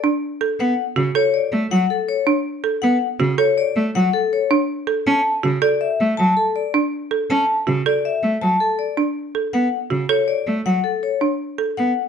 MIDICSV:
0, 0, Header, 1, 4, 480
1, 0, Start_track
1, 0, Tempo, 372671
1, 761, Time_signature, 6, 2, 24, 8
1, 15565, End_track
2, 0, Start_track
2, 0, Title_t, "Vibraphone"
2, 0, Program_c, 0, 11
2, 774, Note_on_c, 0, 78, 65
2, 1078, Note_off_c, 0, 78, 0
2, 1492, Note_on_c, 0, 73, 74
2, 1725, Note_on_c, 0, 74, 57
2, 1797, Note_off_c, 0, 73, 0
2, 2035, Note_off_c, 0, 74, 0
2, 2206, Note_on_c, 0, 78, 72
2, 2452, Note_on_c, 0, 69, 55
2, 2515, Note_off_c, 0, 78, 0
2, 2686, Note_on_c, 0, 73, 62
2, 2757, Note_off_c, 0, 69, 0
2, 2995, Note_off_c, 0, 73, 0
2, 3630, Note_on_c, 0, 78, 72
2, 3949, Note_off_c, 0, 78, 0
2, 4359, Note_on_c, 0, 73, 77
2, 4605, Note_on_c, 0, 74, 63
2, 4673, Note_off_c, 0, 73, 0
2, 4915, Note_off_c, 0, 74, 0
2, 5090, Note_on_c, 0, 78, 77
2, 5324, Note_on_c, 0, 69, 65
2, 5397, Note_off_c, 0, 78, 0
2, 5577, Note_on_c, 0, 73, 64
2, 5635, Note_off_c, 0, 69, 0
2, 5879, Note_off_c, 0, 73, 0
2, 6527, Note_on_c, 0, 81, 65
2, 6835, Note_off_c, 0, 81, 0
2, 7235, Note_on_c, 0, 74, 74
2, 7481, Note_on_c, 0, 76, 60
2, 7551, Note_off_c, 0, 74, 0
2, 7794, Note_off_c, 0, 76, 0
2, 7952, Note_on_c, 0, 81, 71
2, 8200, Note_on_c, 0, 69, 56
2, 8270, Note_off_c, 0, 81, 0
2, 8444, Note_on_c, 0, 74, 61
2, 8513, Note_off_c, 0, 69, 0
2, 8755, Note_off_c, 0, 74, 0
2, 9405, Note_on_c, 0, 81, 66
2, 9715, Note_off_c, 0, 81, 0
2, 10134, Note_on_c, 0, 74, 70
2, 10372, Note_on_c, 0, 76, 57
2, 10438, Note_off_c, 0, 74, 0
2, 10677, Note_off_c, 0, 76, 0
2, 10839, Note_on_c, 0, 81, 68
2, 11082, Note_on_c, 0, 69, 52
2, 11153, Note_off_c, 0, 81, 0
2, 11319, Note_on_c, 0, 74, 52
2, 11394, Note_off_c, 0, 69, 0
2, 11633, Note_off_c, 0, 74, 0
2, 12278, Note_on_c, 0, 78, 59
2, 12592, Note_off_c, 0, 78, 0
2, 13001, Note_on_c, 0, 73, 67
2, 13238, Note_on_c, 0, 74, 57
2, 13313, Note_off_c, 0, 73, 0
2, 13552, Note_off_c, 0, 74, 0
2, 13727, Note_on_c, 0, 78, 69
2, 13961, Note_on_c, 0, 69, 51
2, 14035, Note_off_c, 0, 78, 0
2, 14206, Note_on_c, 0, 73, 56
2, 14273, Note_off_c, 0, 69, 0
2, 14515, Note_off_c, 0, 73, 0
2, 15165, Note_on_c, 0, 78, 65
2, 15475, Note_off_c, 0, 78, 0
2, 15565, End_track
3, 0, Start_track
3, 0, Title_t, "Marimba"
3, 0, Program_c, 1, 12
3, 47, Note_on_c, 1, 62, 73
3, 355, Note_off_c, 1, 62, 0
3, 527, Note_on_c, 1, 69, 63
3, 836, Note_off_c, 1, 69, 0
3, 1239, Note_on_c, 1, 66, 65
3, 1482, Note_on_c, 1, 69, 78
3, 1553, Note_off_c, 1, 66, 0
3, 1794, Note_off_c, 1, 69, 0
3, 2919, Note_on_c, 1, 62, 70
3, 3233, Note_off_c, 1, 62, 0
3, 3397, Note_on_c, 1, 69, 62
3, 3712, Note_off_c, 1, 69, 0
3, 4117, Note_on_c, 1, 66, 63
3, 4355, Note_on_c, 1, 69, 78
3, 4432, Note_off_c, 1, 66, 0
3, 4671, Note_off_c, 1, 69, 0
3, 5805, Note_on_c, 1, 62, 78
3, 6115, Note_off_c, 1, 62, 0
3, 6274, Note_on_c, 1, 69, 63
3, 6591, Note_off_c, 1, 69, 0
3, 6998, Note_on_c, 1, 66, 66
3, 7237, Note_on_c, 1, 69, 80
3, 7312, Note_off_c, 1, 66, 0
3, 7552, Note_off_c, 1, 69, 0
3, 8682, Note_on_c, 1, 62, 70
3, 8994, Note_off_c, 1, 62, 0
3, 9159, Note_on_c, 1, 69, 61
3, 9472, Note_off_c, 1, 69, 0
3, 9878, Note_on_c, 1, 66, 60
3, 10125, Note_on_c, 1, 69, 70
3, 10192, Note_off_c, 1, 66, 0
3, 10435, Note_off_c, 1, 69, 0
3, 11558, Note_on_c, 1, 62, 64
3, 11872, Note_off_c, 1, 62, 0
3, 12042, Note_on_c, 1, 69, 56
3, 12354, Note_off_c, 1, 69, 0
3, 12756, Note_on_c, 1, 66, 53
3, 12999, Note_on_c, 1, 69, 73
3, 13072, Note_off_c, 1, 66, 0
3, 13313, Note_off_c, 1, 69, 0
3, 14441, Note_on_c, 1, 62, 65
3, 14753, Note_off_c, 1, 62, 0
3, 14920, Note_on_c, 1, 69, 57
3, 15233, Note_off_c, 1, 69, 0
3, 15565, End_track
4, 0, Start_track
4, 0, Title_t, "Cello"
4, 0, Program_c, 2, 42
4, 767, Note_on_c, 2, 59, 74
4, 945, Note_off_c, 2, 59, 0
4, 1245, Note_on_c, 2, 49, 58
4, 1423, Note_off_c, 2, 49, 0
4, 1960, Note_on_c, 2, 57, 60
4, 2141, Note_off_c, 2, 57, 0
4, 2204, Note_on_c, 2, 54, 76
4, 2383, Note_off_c, 2, 54, 0
4, 3646, Note_on_c, 2, 59, 81
4, 3824, Note_off_c, 2, 59, 0
4, 4120, Note_on_c, 2, 49, 65
4, 4301, Note_off_c, 2, 49, 0
4, 4844, Note_on_c, 2, 57, 62
4, 5023, Note_off_c, 2, 57, 0
4, 5089, Note_on_c, 2, 54, 77
4, 5266, Note_off_c, 2, 54, 0
4, 6529, Note_on_c, 2, 61, 83
4, 6706, Note_off_c, 2, 61, 0
4, 7012, Note_on_c, 2, 49, 63
4, 7188, Note_off_c, 2, 49, 0
4, 7735, Note_on_c, 2, 57, 64
4, 7910, Note_off_c, 2, 57, 0
4, 7975, Note_on_c, 2, 54, 72
4, 8150, Note_off_c, 2, 54, 0
4, 9403, Note_on_c, 2, 61, 75
4, 9582, Note_off_c, 2, 61, 0
4, 9888, Note_on_c, 2, 49, 59
4, 10066, Note_off_c, 2, 49, 0
4, 10601, Note_on_c, 2, 57, 55
4, 10781, Note_off_c, 2, 57, 0
4, 10846, Note_on_c, 2, 54, 67
4, 11024, Note_off_c, 2, 54, 0
4, 12282, Note_on_c, 2, 59, 72
4, 12462, Note_off_c, 2, 59, 0
4, 12763, Note_on_c, 2, 49, 47
4, 12943, Note_off_c, 2, 49, 0
4, 13484, Note_on_c, 2, 57, 55
4, 13663, Note_off_c, 2, 57, 0
4, 13729, Note_on_c, 2, 54, 69
4, 13906, Note_off_c, 2, 54, 0
4, 15174, Note_on_c, 2, 59, 74
4, 15349, Note_off_c, 2, 59, 0
4, 15565, End_track
0, 0, End_of_file